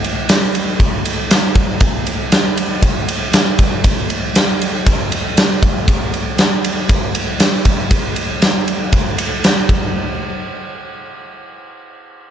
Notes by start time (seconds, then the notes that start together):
0.04 ride
0.29 snare, ride
0.55 ride
0.80 kick, ride
1.05 ride
1.31 snare, ride
1.55 kick, ride
1.80 kick, ride
2.07 ride
2.32 snare, ride
2.57 ride
2.83 kick, ride
3.08 ride
3.33 snare, ride
3.59 kick, ride
3.84 kick, ride
4.10 ride
4.35 snare, ride
4.62 ride
4.87 kick, ride
5.12 ride
5.37 snare, ride
5.63 kick, ride
5.88 kick, ride
6.14 ride
6.38 snare, ride
6.64 ride
6.89 kick, ride
7.15 ride
7.40 snare, ride
7.65 kick, ride
7.91 kick, ride
8.16 ride
8.42 snare, ride
8.68 ride
8.93 kick, ride
9.18 ride
9.44 snare, ride
9.69 kick, ride